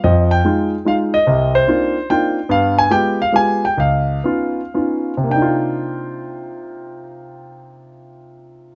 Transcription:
0, 0, Header, 1, 2, 480
1, 0, Start_track
1, 0, Key_signature, -3, "minor"
1, 0, Tempo, 408998
1, 46, Time_signature, 3, 2, 24, 8
1, 3406, Tempo, 445104
1, 4846, Tempo, 530504
1, 5806, Tempo, 584226
1, 8642, End_track
2, 0, Start_track
2, 0, Title_t, "Grand piano"
2, 0, Program_c, 0, 0
2, 44, Note_on_c, 0, 75, 82
2, 46, Note_on_c, 0, 41, 69
2, 49, Note_on_c, 0, 53, 69
2, 366, Note_on_c, 0, 79, 92
2, 378, Note_off_c, 0, 75, 0
2, 462, Note_off_c, 0, 41, 0
2, 464, Note_off_c, 0, 53, 0
2, 524, Note_on_c, 0, 56, 55
2, 532, Note_on_c, 0, 63, 51
2, 536, Note_on_c, 0, 65, 57
2, 813, Note_off_c, 0, 79, 0
2, 863, Note_off_c, 0, 56, 0
2, 867, Note_off_c, 0, 63, 0
2, 869, Note_off_c, 0, 65, 0
2, 1001, Note_on_c, 0, 56, 48
2, 1006, Note_on_c, 0, 63, 47
2, 1014, Note_on_c, 0, 65, 56
2, 1029, Note_on_c, 0, 77, 88
2, 1099, Note_off_c, 0, 77, 0
2, 1336, Note_on_c, 0, 75, 102
2, 1341, Note_off_c, 0, 56, 0
2, 1344, Note_off_c, 0, 63, 0
2, 1348, Note_off_c, 0, 65, 0
2, 1490, Note_on_c, 0, 48, 70
2, 1491, Note_on_c, 0, 36, 69
2, 1820, Note_on_c, 0, 72, 98
2, 1825, Note_off_c, 0, 75, 0
2, 1903, Note_off_c, 0, 48, 0
2, 1904, Note_off_c, 0, 36, 0
2, 1963, Note_on_c, 0, 58, 52
2, 1967, Note_on_c, 0, 60, 52
2, 1970, Note_on_c, 0, 62, 53
2, 1972, Note_on_c, 0, 63, 50
2, 1977, Note_on_c, 0, 65, 61
2, 2302, Note_off_c, 0, 58, 0
2, 2304, Note_off_c, 0, 60, 0
2, 2305, Note_off_c, 0, 62, 0
2, 2306, Note_off_c, 0, 63, 0
2, 2309, Note_off_c, 0, 65, 0
2, 2461, Note_on_c, 0, 60, 45
2, 2462, Note_on_c, 0, 58, 50
2, 2465, Note_on_c, 0, 79, 91
2, 2468, Note_off_c, 0, 72, 0
2, 2469, Note_on_c, 0, 62, 45
2, 2469, Note_on_c, 0, 65, 59
2, 2470, Note_on_c, 0, 63, 49
2, 2791, Note_off_c, 0, 58, 0
2, 2791, Note_off_c, 0, 60, 0
2, 2794, Note_off_c, 0, 62, 0
2, 2795, Note_off_c, 0, 63, 0
2, 2795, Note_off_c, 0, 65, 0
2, 2924, Note_on_c, 0, 59, 69
2, 2930, Note_on_c, 0, 43, 71
2, 2948, Note_off_c, 0, 79, 0
2, 2950, Note_on_c, 0, 77, 96
2, 3269, Note_on_c, 0, 80, 98
2, 3271, Note_off_c, 0, 77, 0
2, 3344, Note_off_c, 0, 59, 0
2, 3347, Note_off_c, 0, 43, 0
2, 3410, Note_on_c, 0, 56, 55
2, 3411, Note_on_c, 0, 65, 51
2, 3413, Note_on_c, 0, 59, 51
2, 3414, Note_on_c, 0, 67, 62
2, 3419, Note_on_c, 0, 79, 93
2, 3420, Note_off_c, 0, 80, 0
2, 3728, Note_off_c, 0, 79, 0
2, 3729, Note_off_c, 0, 56, 0
2, 3730, Note_off_c, 0, 59, 0
2, 3730, Note_off_c, 0, 65, 0
2, 3731, Note_off_c, 0, 67, 0
2, 3746, Note_on_c, 0, 77, 95
2, 3861, Note_on_c, 0, 56, 50
2, 3870, Note_on_c, 0, 59, 46
2, 3875, Note_on_c, 0, 67, 59
2, 3876, Note_on_c, 0, 65, 47
2, 3884, Note_off_c, 0, 77, 0
2, 3897, Note_on_c, 0, 80, 98
2, 4196, Note_off_c, 0, 56, 0
2, 4201, Note_off_c, 0, 59, 0
2, 4203, Note_off_c, 0, 67, 0
2, 4204, Note_off_c, 0, 65, 0
2, 4208, Note_off_c, 0, 80, 0
2, 4211, Note_on_c, 0, 79, 84
2, 4347, Note_on_c, 0, 37, 69
2, 4359, Note_off_c, 0, 79, 0
2, 4372, Note_on_c, 0, 77, 86
2, 4783, Note_off_c, 0, 37, 0
2, 4847, Note_on_c, 0, 59, 56
2, 4855, Note_on_c, 0, 61, 47
2, 4856, Note_on_c, 0, 63, 47
2, 4862, Note_on_c, 0, 65, 62
2, 5165, Note_off_c, 0, 59, 0
2, 5170, Note_off_c, 0, 61, 0
2, 5170, Note_off_c, 0, 63, 0
2, 5173, Note_off_c, 0, 65, 0
2, 5302, Note_on_c, 0, 59, 49
2, 5305, Note_on_c, 0, 61, 45
2, 5310, Note_on_c, 0, 63, 46
2, 5310, Note_on_c, 0, 65, 52
2, 5613, Note_off_c, 0, 77, 0
2, 5652, Note_off_c, 0, 59, 0
2, 5653, Note_off_c, 0, 61, 0
2, 5656, Note_off_c, 0, 63, 0
2, 5656, Note_off_c, 0, 65, 0
2, 5693, Note_on_c, 0, 48, 63
2, 5749, Note_on_c, 0, 58, 56
2, 5805, Note_on_c, 0, 62, 61
2, 5819, Note_on_c, 0, 79, 80
2, 5857, Note_on_c, 0, 63, 59
2, 5906, Note_on_c, 0, 65, 68
2, 8642, Note_off_c, 0, 48, 0
2, 8642, Note_off_c, 0, 58, 0
2, 8642, Note_off_c, 0, 62, 0
2, 8642, Note_off_c, 0, 63, 0
2, 8642, Note_off_c, 0, 65, 0
2, 8642, Note_off_c, 0, 79, 0
2, 8642, End_track
0, 0, End_of_file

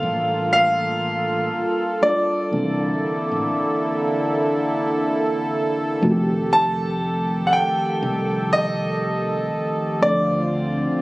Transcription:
0, 0, Header, 1, 5, 480
1, 0, Start_track
1, 0, Key_signature, -2, "minor"
1, 0, Tempo, 1000000
1, 1211, Time_signature, 4, 2, 24, 8
1, 5288, End_track
2, 0, Start_track
2, 0, Title_t, "Grand piano"
2, 0, Program_c, 0, 0
2, 0, Note_on_c, 0, 77, 90
2, 246, Note_off_c, 0, 77, 0
2, 253, Note_on_c, 0, 77, 97
2, 973, Note_on_c, 0, 74, 89
2, 994, Note_off_c, 0, 77, 0
2, 2393, Note_off_c, 0, 74, 0
2, 3133, Note_on_c, 0, 81, 101
2, 3585, Note_on_c, 0, 78, 73
2, 3597, Note_off_c, 0, 81, 0
2, 3612, Note_off_c, 0, 78, 0
2, 3613, Note_on_c, 0, 79, 94
2, 4093, Note_on_c, 0, 75, 95
2, 4107, Note_off_c, 0, 79, 0
2, 4812, Note_on_c, 0, 74, 90
2, 4834, Note_off_c, 0, 75, 0
2, 5288, Note_off_c, 0, 74, 0
2, 5288, End_track
3, 0, Start_track
3, 0, Title_t, "Synth keys"
3, 0, Program_c, 1, 88
3, 0, Control_c, 1, 64, 127
3, 0, Note_on_c, 1, 55, 75
3, 0, Note_on_c, 1, 58, 66
3, 0, Note_on_c, 1, 62, 62
3, 0, Note_on_c, 1, 65, 66
3, 0, Note_on_c, 1, 69, 77
3, 966, Note_off_c, 1, 55, 0
3, 966, Note_on_c, 1, 55, 69
3, 970, Note_off_c, 1, 58, 0
3, 970, Note_on_c, 1, 58, 59
3, 973, Note_off_c, 1, 62, 0
3, 973, Note_on_c, 1, 62, 60
3, 977, Note_off_c, 1, 65, 0
3, 977, Note_on_c, 1, 65, 59
3, 980, Note_off_c, 1, 69, 0
3, 980, Note_on_c, 1, 69, 73
3, 1131, Note_off_c, 1, 55, 0
3, 1133, Note_off_c, 1, 58, 0
3, 1134, Note_off_c, 1, 62, 0
3, 1136, Note_off_c, 1, 65, 0
3, 1138, Note_off_c, 1, 69, 0
3, 1205, Note_on_c, 1, 52, 74
3, 1209, Note_on_c, 1, 58, 70
3, 1212, Note_on_c, 1, 60, 67
3, 1216, Control_c, 1, 64, 0
3, 1216, Note_on_c, 1, 62, 67
3, 1219, Note_on_c, 1, 69, 83
3, 1294, Control_c, 1, 64, 127
3, 1816, Note_off_c, 1, 52, 0
3, 1818, Note_off_c, 1, 58, 0
3, 1819, Note_off_c, 1, 60, 0
3, 1821, Note_off_c, 1, 62, 0
3, 1823, Note_off_c, 1, 69, 0
3, 2885, Note_on_c, 1, 53, 86
3, 2889, Note_on_c, 1, 57, 79
3, 2892, Note_on_c, 1, 60, 75
3, 2895, Note_on_c, 1, 63, 75
3, 2898, Control_c, 1, 64, 0
3, 2898, Note_on_c, 1, 66, 75
3, 2929, Note_on_c, 1, 67, 92
3, 2931, Note_off_c, 1, 66, 0
3, 2978, Control_c, 1, 64, 127
3, 3664, Note_off_c, 1, 53, 0
3, 3665, Note_off_c, 1, 57, 0
3, 3667, Note_off_c, 1, 60, 0
3, 3669, Note_off_c, 1, 63, 0
3, 3686, Note_off_c, 1, 67, 0
3, 4806, Note_on_c, 1, 53, 71
3, 4809, Note_on_c, 1, 57, 64
3, 4813, Note_on_c, 1, 60, 64
3, 4815, Note_on_c, 1, 62, 68
3, 4817, Control_c, 1, 64, 0
3, 4819, Note_on_c, 1, 69, 76
3, 4911, Control_c, 1, 64, 127
3, 5288, Note_off_c, 1, 53, 0
3, 5288, Note_off_c, 1, 57, 0
3, 5288, Note_off_c, 1, 60, 0
3, 5288, Note_off_c, 1, 62, 0
3, 5288, Note_off_c, 1, 69, 0
3, 5288, End_track
4, 0, Start_track
4, 0, Title_t, "Analog synth pad"
4, 0, Program_c, 2, 89
4, 0, Note_on_c, 2, 58, 80
4, 0, Note_on_c, 2, 65, 82
4, 0, Note_on_c, 2, 69, 69
4, 1192, Note_off_c, 2, 58, 0
4, 1192, Note_off_c, 2, 65, 0
4, 1211, Note_on_c, 2, 50, 77
4, 1211, Note_on_c, 2, 58, 71
4, 1211, Note_on_c, 2, 64, 87
4, 2874, Note_off_c, 2, 50, 0
4, 2874, Note_off_c, 2, 58, 0
4, 2874, Note_off_c, 2, 64, 0
4, 2891, Note_on_c, 2, 51, 76
4, 2892, Note_on_c, 2, 67, 93
4, 4792, Note_off_c, 2, 51, 0
4, 4792, Note_off_c, 2, 67, 0
4, 4792, Note_off_c, 2, 69, 0
4, 4812, Note_on_c, 2, 60, 73
4, 4812, Note_on_c, 2, 65, 91
4, 4813, Note_on_c, 2, 50, 79
4, 5288, Note_off_c, 2, 50, 0
4, 5288, Note_off_c, 2, 60, 0
4, 5288, Note_off_c, 2, 65, 0
4, 5288, End_track
5, 0, Start_track
5, 0, Title_t, "Fretless electric bass"
5, 0, Program_c, 3, 35
5, 13, Note_on_c, 3, 33, 92
5, 713, Note_off_c, 3, 33, 0
5, 1212, Note_on_c, 3, 36, 92
5, 1402, Note_off_c, 3, 36, 0
5, 1591, Note_on_c, 3, 33, 79
5, 1671, Note_off_c, 3, 33, 0
5, 2892, Note_on_c, 3, 29, 97
5, 3652, Note_off_c, 3, 29, 0
5, 3852, Note_on_c, 3, 36, 95
5, 4552, Note_off_c, 3, 36, 0
5, 4812, Note_on_c, 3, 38, 86
5, 5192, Note_off_c, 3, 38, 0
5, 5288, End_track
0, 0, End_of_file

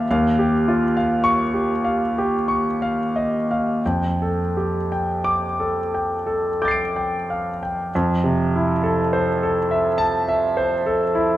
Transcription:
0, 0, Header, 1, 2, 480
1, 0, Start_track
1, 0, Tempo, 1147228
1, 23, Time_signature, 3, 2, 24, 8
1, 503, Tempo, 1242236
1, 983, Tempo, 1382488
1, 2423, Tempo, 1318681
1, 2903, Tempo, 1192843
1, 3383, Tempo, 1156069
1, 4324, End_track
2, 0, Start_track
2, 0, Title_t, "Grand piano"
2, 0, Program_c, 0, 0
2, 0, Control_c, 0, 64, 127
2, 31, Control_c, 0, 64, 0
2, 44, Note_on_c, 0, 77, 49
2, 45, Note_on_c, 0, 39, 57
2, 105, Control_c, 0, 64, 127
2, 163, Note_on_c, 0, 67, 46
2, 223, Note_off_c, 0, 77, 0
2, 286, Note_on_c, 0, 65, 44
2, 343, Note_off_c, 0, 67, 0
2, 393, Note_off_c, 0, 65, 0
2, 404, Note_on_c, 0, 77, 49
2, 516, Note_on_c, 0, 85, 64
2, 583, Note_off_c, 0, 77, 0
2, 633, Note_on_c, 0, 67, 44
2, 696, Note_off_c, 0, 85, 0
2, 751, Note_on_c, 0, 77, 47
2, 817, Note_off_c, 0, 67, 0
2, 882, Note_on_c, 0, 67, 46
2, 939, Note_off_c, 0, 77, 0
2, 996, Note_on_c, 0, 85, 47
2, 1061, Note_off_c, 0, 67, 0
2, 1113, Note_on_c, 0, 77, 43
2, 1173, Note_off_c, 0, 85, 0
2, 1231, Note_on_c, 0, 75, 40
2, 1294, Note_off_c, 0, 77, 0
2, 1342, Note_off_c, 0, 75, 0
2, 1353, Note_on_c, 0, 77, 39
2, 1453, Note_off_c, 0, 39, 0
2, 1465, Control_c, 0, 64, 0
2, 1467, Note_off_c, 0, 77, 0
2, 1474, Note_on_c, 0, 41, 44
2, 1474, Note_on_c, 0, 79, 41
2, 1525, Control_c, 0, 64, 127
2, 1599, Note_on_c, 0, 69, 38
2, 1665, Note_off_c, 0, 79, 0
2, 1721, Note_on_c, 0, 67, 35
2, 1787, Note_off_c, 0, 69, 0
2, 1835, Note_off_c, 0, 67, 0
2, 1842, Note_on_c, 0, 79, 41
2, 1955, Note_on_c, 0, 86, 55
2, 2027, Note_off_c, 0, 79, 0
2, 2077, Note_on_c, 0, 69, 37
2, 2143, Note_off_c, 0, 86, 0
2, 2198, Note_on_c, 0, 79, 38
2, 2263, Note_off_c, 0, 69, 0
2, 2310, Note_on_c, 0, 69, 40
2, 2381, Note_off_c, 0, 79, 0
2, 2432, Note_on_c, 0, 86, 42
2, 2432, Note_on_c, 0, 91, 29
2, 2444, Note_on_c, 0, 93, 31
2, 2455, Note_on_c, 0, 96, 32
2, 2467, Note_on_c, 0, 98, 30
2, 2498, Note_off_c, 0, 69, 0
2, 2558, Note_on_c, 0, 79, 37
2, 2624, Note_off_c, 0, 86, 0
2, 2681, Note_on_c, 0, 77, 35
2, 2748, Note_off_c, 0, 79, 0
2, 2795, Note_off_c, 0, 77, 0
2, 2800, Note_on_c, 0, 79, 38
2, 2893, Note_off_c, 0, 91, 0
2, 2896, Note_off_c, 0, 41, 0
2, 2899, Note_off_c, 0, 93, 0
2, 2904, Note_off_c, 0, 96, 0
2, 2908, Note_off_c, 0, 79, 0
2, 2909, Control_c, 0, 64, 0
2, 2911, Note_off_c, 0, 98, 0
2, 2920, Note_on_c, 0, 41, 56
2, 2987, Control_c, 0, 64, 127
2, 3034, Note_on_c, 0, 48, 44
2, 3163, Note_on_c, 0, 64, 44
2, 3222, Note_off_c, 0, 48, 0
2, 3274, Note_on_c, 0, 69, 49
2, 3345, Note_off_c, 0, 64, 0
2, 3394, Note_on_c, 0, 72, 52
2, 3460, Note_off_c, 0, 69, 0
2, 3518, Note_on_c, 0, 69, 50
2, 3580, Note_off_c, 0, 72, 0
2, 3635, Note_on_c, 0, 76, 51
2, 3701, Note_off_c, 0, 69, 0
2, 3747, Note_on_c, 0, 81, 72
2, 3819, Note_off_c, 0, 76, 0
2, 3873, Note_on_c, 0, 76, 53
2, 3935, Note_off_c, 0, 81, 0
2, 3991, Note_on_c, 0, 72, 52
2, 4059, Note_off_c, 0, 76, 0
2, 4114, Note_on_c, 0, 69, 49
2, 4179, Note_off_c, 0, 72, 0
2, 4233, Note_on_c, 0, 64, 48
2, 4301, Note_off_c, 0, 69, 0
2, 4324, Note_off_c, 0, 41, 0
2, 4324, Note_off_c, 0, 64, 0
2, 4324, End_track
0, 0, End_of_file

